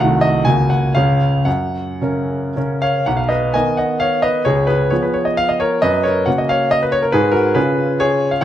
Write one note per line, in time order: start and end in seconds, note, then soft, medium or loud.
0.00 0.45 C2 medium
0.00 0.43 D#3 soft
0.00 0.43 A3 soft
0.00 0.43 F#4 soft
0.00 0.22 F#5 medium
0.21 0.46 D#5 medium
0.45 0.94 C#2 medium
0.45 0.91 C#3 soft
0.45 0.92 A#3 soft
0.45 0.92 F#4 soft
0.45 0.70 G#5 medium
0.70 0.95 F#5 medium
0.95 1.45 C#2 medium
0.95 1.42 C#3 soft
0.95 1.43 C#4 soft
0.95 1.43 G#4 soft
0.95 1.46 F5 medium
1.45 2.00 F#2 medium
1.45 2.81 F#5 medium
2.01 2.52 C#3 soft
2.01 2.52 C#4 soft
2.01 2.53 A#4 soft
2.56 3.02 C#3 soft
2.56 3.03 C#4 soft
2.56 3.03 A#4 soft
2.82 3.05 C#5 medium
2.82 3.06 F5 medium
3.06 3.53 B1 medium
3.06 3.18 F#5 medium
3.17 3.29 F5 medium
3.29 3.52 B4 soft
3.29 3.53 D#5 medium
3.54 4.41 D#3 soft
3.54 4.42 B3 soft
3.54 4.42 A#4 soft
3.54 3.77 D#5 medium
3.54 3.78 G#5 medium
3.77 4.00 D#5 soft
3.77 4.01 F#5 medium
4.00 4.22 C#5 medium
4.00 4.23 F5 medium
4.22 4.44 B4 medium
4.22 4.45 D#5 medium
4.45 4.90 C#2 medium
4.45 4.67 G#4 medium
4.45 4.67 C#5 medium
4.67 4.90 G#4 medium
4.67 4.91 B4 medium
4.90 5.79 F3 soft
4.90 5.79 B3 soft
4.90 5.79 G#4 soft
4.90 5.03 C#5 medium
5.03 5.15 B4 medium
5.14 5.26 C#5 medium
5.25 5.37 D#5 medium
5.37 5.49 F5 medium
5.49 5.60 D#5 medium
5.60 5.81 A#4 medium
5.60 5.82 C#5 medium
5.82 6.26 F#2 medium
5.82 6.04 B4 medium
5.82 6.04 D#5 medium
6.03 6.26 A#4 medium
6.03 6.27 C#5 medium
6.26 7.09 C#3 soft
6.26 7.10 A#3 soft
6.26 7.10 F#4 soft
6.26 6.38 F#5 medium
6.38 6.50 D#5 medium
6.49 6.71 C#5 medium
6.49 6.72 F5 medium
6.71 6.82 D#5 medium
6.83 6.93 B4 medium
6.92 7.03 C#5 medium
7.03 7.13 A#4 medium
7.12 7.55 G#2 medium
7.12 7.33 G#4 medium
7.12 7.34 B4 medium
7.32 7.54 F#4 medium
7.32 7.55 A#4 medium
7.55 8.38 C#3 soft
7.55 8.38 C#4 soft
7.55 8.38 F4 soft
7.55 7.98 G#4 medium
7.55 8.00 B4 medium
8.00 8.30 G#4 medium
8.00 8.32 C#5 medium
8.31 8.42 F5 medium